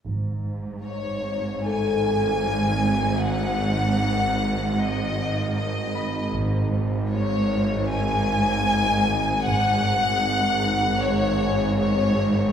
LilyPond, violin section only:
\new Staff \with { instrumentName = "Violin section" } { \time 4/4 \key gis \phrygian \tempo 4 = 77 r4 cis''4 gis''2 | fis''2 dis''4 dis''4 | r4 cis''4 gis''2 | fis''2 cis''4 cis''4 | }